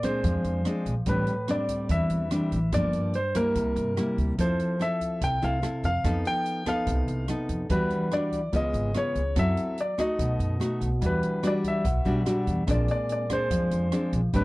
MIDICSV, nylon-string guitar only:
0, 0, Header, 1, 2, 480
1, 0, Start_track
1, 0, Tempo, 414365
1, 1237, Time_signature, 4, 2, 24, 8
1, 16731, End_track
2, 0, Start_track
2, 0, Title_t, "Nylon-string guitar"
2, 0, Program_c, 0, 24
2, 0, Note_on_c, 0, 46, 52
2, 40, Note_on_c, 0, 56, 55
2, 45, Note_on_c, 0, 60, 61
2, 50, Note_on_c, 0, 62, 65
2, 259, Note_off_c, 0, 46, 0
2, 276, Note_on_c, 0, 53, 56
2, 721, Note_off_c, 0, 56, 0
2, 722, Note_off_c, 0, 60, 0
2, 725, Note_off_c, 0, 62, 0
2, 759, Note_on_c, 0, 56, 60
2, 763, Note_on_c, 0, 60, 54
2, 767, Note_on_c, 0, 62, 59
2, 1081, Note_off_c, 0, 56, 0
2, 1083, Note_off_c, 0, 60, 0
2, 1084, Note_off_c, 0, 62, 0
2, 1213, Note_off_c, 0, 53, 0
2, 1233, Note_on_c, 0, 45, 54
2, 1236, Note_on_c, 0, 55, 54
2, 1238, Note_on_c, 0, 60, 52
2, 1245, Note_on_c, 0, 62, 54
2, 1546, Note_off_c, 0, 55, 0
2, 1547, Note_off_c, 0, 60, 0
2, 1551, Note_off_c, 0, 62, 0
2, 1719, Note_on_c, 0, 55, 53
2, 1726, Note_on_c, 0, 60, 52
2, 1728, Note_on_c, 0, 62, 65
2, 2172, Note_off_c, 0, 45, 0
2, 2199, Note_on_c, 0, 52, 61
2, 2641, Note_off_c, 0, 55, 0
2, 2643, Note_off_c, 0, 60, 0
2, 2645, Note_off_c, 0, 62, 0
2, 2674, Note_on_c, 0, 55, 51
2, 2682, Note_on_c, 0, 60, 51
2, 2683, Note_on_c, 0, 62, 61
2, 2986, Note_off_c, 0, 55, 0
2, 2988, Note_off_c, 0, 60, 0
2, 2990, Note_off_c, 0, 62, 0
2, 3135, Note_off_c, 0, 52, 0
2, 3161, Note_on_c, 0, 43, 53
2, 3161, Note_on_c, 0, 53, 52
2, 3165, Note_on_c, 0, 58, 53
2, 3173, Note_on_c, 0, 62, 62
2, 3637, Note_off_c, 0, 53, 0
2, 3639, Note_off_c, 0, 58, 0
2, 3643, Note_off_c, 0, 62, 0
2, 3879, Note_on_c, 0, 55, 59
2, 3885, Note_on_c, 0, 58, 61
2, 3887, Note_on_c, 0, 64, 63
2, 4097, Note_off_c, 0, 43, 0
2, 4117, Note_on_c, 0, 48, 51
2, 4562, Note_off_c, 0, 55, 0
2, 4563, Note_off_c, 0, 58, 0
2, 4565, Note_off_c, 0, 64, 0
2, 4596, Note_on_c, 0, 55, 47
2, 4601, Note_on_c, 0, 58, 52
2, 4608, Note_on_c, 0, 64, 51
2, 5055, Note_off_c, 0, 48, 0
2, 5059, Note_off_c, 0, 55, 0
2, 5062, Note_off_c, 0, 58, 0
2, 5064, Note_off_c, 0, 64, 0
2, 5079, Note_on_c, 0, 53, 55
2, 5086, Note_on_c, 0, 64, 45
2, 5087, Note_on_c, 0, 60, 52
2, 5092, Note_on_c, 0, 69, 64
2, 5524, Note_off_c, 0, 60, 0
2, 5525, Note_off_c, 0, 64, 0
2, 5528, Note_off_c, 0, 69, 0
2, 5554, Note_on_c, 0, 60, 53
2, 5559, Note_on_c, 0, 64, 48
2, 5567, Note_on_c, 0, 69, 60
2, 6017, Note_off_c, 0, 53, 0
2, 6040, Note_on_c, 0, 48, 53
2, 6239, Note_off_c, 0, 60, 0
2, 6242, Note_off_c, 0, 64, 0
2, 6246, Note_off_c, 0, 69, 0
2, 6279, Note_on_c, 0, 60, 58
2, 6285, Note_on_c, 0, 64, 58
2, 6293, Note_on_c, 0, 69, 58
2, 6481, Note_off_c, 0, 60, 0
2, 6486, Note_off_c, 0, 64, 0
2, 6488, Note_off_c, 0, 69, 0
2, 6511, Note_on_c, 0, 60, 45
2, 6515, Note_on_c, 0, 64, 49
2, 6522, Note_on_c, 0, 69, 55
2, 6826, Note_off_c, 0, 60, 0
2, 6827, Note_off_c, 0, 64, 0
2, 6831, Note_off_c, 0, 69, 0
2, 6977, Note_off_c, 0, 48, 0
2, 6999, Note_on_c, 0, 53, 53
2, 7000, Note_on_c, 0, 59, 55
2, 7004, Note_on_c, 0, 63, 55
2, 7010, Note_on_c, 0, 69, 62
2, 7682, Note_off_c, 0, 59, 0
2, 7685, Note_off_c, 0, 63, 0
2, 7687, Note_off_c, 0, 69, 0
2, 7715, Note_on_c, 0, 59, 57
2, 7722, Note_on_c, 0, 63, 61
2, 7724, Note_on_c, 0, 69, 67
2, 7937, Note_off_c, 0, 53, 0
2, 7957, Note_on_c, 0, 48, 57
2, 8402, Note_off_c, 0, 59, 0
2, 8402, Note_off_c, 0, 63, 0
2, 8405, Note_off_c, 0, 69, 0
2, 8441, Note_on_c, 0, 59, 52
2, 8446, Note_on_c, 0, 63, 54
2, 8453, Note_on_c, 0, 69, 66
2, 8896, Note_off_c, 0, 48, 0
2, 8903, Note_off_c, 0, 59, 0
2, 8906, Note_off_c, 0, 63, 0
2, 8908, Note_off_c, 0, 69, 0
2, 8919, Note_on_c, 0, 52, 56
2, 8920, Note_on_c, 0, 55, 55
2, 8927, Note_on_c, 0, 62, 52
2, 8931, Note_on_c, 0, 66, 61
2, 9363, Note_off_c, 0, 55, 0
2, 9365, Note_off_c, 0, 62, 0
2, 9369, Note_off_c, 0, 66, 0
2, 9404, Note_on_c, 0, 55, 52
2, 9412, Note_on_c, 0, 62, 65
2, 9415, Note_on_c, 0, 66, 61
2, 9728, Note_off_c, 0, 55, 0
2, 9728, Note_off_c, 0, 62, 0
2, 9732, Note_off_c, 0, 66, 0
2, 9859, Note_off_c, 0, 52, 0
2, 9876, Note_on_c, 0, 49, 54
2, 9878, Note_on_c, 0, 56, 52
2, 9885, Note_on_c, 0, 59, 54
2, 9885, Note_on_c, 0, 65, 58
2, 10322, Note_off_c, 0, 56, 0
2, 10324, Note_off_c, 0, 59, 0
2, 10326, Note_off_c, 0, 65, 0
2, 10364, Note_on_c, 0, 56, 51
2, 10369, Note_on_c, 0, 59, 56
2, 10371, Note_on_c, 0, 65, 62
2, 10673, Note_off_c, 0, 56, 0
2, 10676, Note_off_c, 0, 59, 0
2, 10676, Note_off_c, 0, 65, 0
2, 10817, Note_off_c, 0, 49, 0
2, 10837, Note_on_c, 0, 54, 50
2, 10842, Note_on_c, 0, 60, 60
2, 10847, Note_on_c, 0, 69, 65
2, 10849, Note_on_c, 0, 64, 52
2, 11319, Note_off_c, 0, 60, 0
2, 11321, Note_off_c, 0, 64, 0
2, 11323, Note_off_c, 0, 69, 0
2, 11554, Note_off_c, 0, 54, 0
2, 11559, Note_on_c, 0, 57, 56
2, 11563, Note_on_c, 0, 63, 63
2, 11569, Note_on_c, 0, 66, 69
2, 11803, Note_on_c, 0, 47, 56
2, 12243, Note_off_c, 0, 57, 0
2, 12246, Note_off_c, 0, 63, 0
2, 12248, Note_off_c, 0, 66, 0
2, 12277, Note_on_c, 0, 57, 56
2, 12285, Note_on_c, 0, 63, 47
2, 12288, Note_on_c, 0, 66, 56
2, 12605, Note_off_c, 0, 57, 0
2, 12606, Note_off_c, 0, 63, 0
2, 12609, Note_off_c, 0, 66, 0
2, 12740, Note_off_c, 0, 47, 0
2, 12757, Note_on_c, 0, 52, 52
2, 12759, Note_on_c, 0, 55, 55
2, 12763, Note_on_c, 0, 62, 54
2, 12769, Note_on_c, 0, 66, 59
2, 13203, Note_off_c, 0, 55, 0
2, 13205, Note_off_c, 0, 62, 0
2, 13208, Note_off_c, 0, 66, 0
2, 13240, Note_on_c, 0, 55, 62
2, 13244, Note_on_c, 0, 62, 58
2, 13249, Note_on_c, 0, 66, 56
2, 13697, Note_off_c, 0, 52, 0
2, 13719, Note_off_c, 0, 55, 0
2, 13721, Note_off_c, 0, 62, 0
2, 13724, Note_off_c, 0, 66, 0
2, 13724, Note_on_c, 0, 47, 56
2, 13960, Note_on_c, 0, 55, 64
2, 13969, Note_on_c, 0, 62, 62
2, 13973, Note_on_c, 0, 66, 74
2, 14165, Note_off_c, 0, 55, 0
2, 14167, Note_off_c, 0, 62, 0
2, 14170, Note_off_c, 0, 66, 0
2, 14197, Note_on_c, 0, 55, 49
2, 14201, Note_on_c, 0, 62, 49
2, 14209, Note_on_c, 0, 66, 56
2, 14642, Note_off_c, 0, 55, 0
2, 14645, Note_off_c, 0, 62, 0
2, 14647, Note_off_c, 0, 66, 0
2, 14660, Note_off_c, 0, 47, 0
2, 14676, Note_on_c, 0, 46, 60
2, 14680, Note_on_c, 0, 56, 55
2, 14680, Note_on_c, 0, 60, 57
2, 14688, Note_on_c, 0, 62, 59
2, 15362, Note_off_c, 0, 56, 0
2, 15364, Note_off_c, 0, 60, 0
2, 15366, Note_off_c, 0, 62, 0
2, 15408, Note_on_c, 0, 56, 57
2, 15412, Note_on_c, 0, 60, 62
2, 15419, Note_on_c, 0, 62, 67
2, 15616, Note_off_c, 0, 46, 0
2, 15648, Note_on_c, 0, 53, 55
2, 16087, Note_off_c, 0, 56, 0
2, 16090, Note_off_c, 0, 60, 0
2, 16091, Note_off_c, 0, 62, 0
2, 16126, Note_on_c, 0, 56, 57
2, 16131, Note_on_c, 0, 60, 54
2, 16137, Note_on_c, 0, 62, 57
2, 16447, Note_off_c, 0, 56, 0
2, 16450, Note_off_c, 0, 60, 0
2, 16451, Note_off_c, 0, 62, 0
2, 16581, Note_off_c, 0, 53, 0
2, 16607, Note_on_c, 0, 55, 61
2, 16608, Note_on_c, 0, 45, 62
2, 16610, Note_on_c, 0, 60, 52
2, 16618, Note_on_c, 0, 62, 63
2, 16731, Note_off_c, 0, 45, 0
2, 16731, Note_off_c, 0, 55, 0
2, 16731, Note_off_c, 0, 60, 0
2, 16731, Note_off_c, 0, 62, 0
2, 16731, End_track
0, 0, End_of_file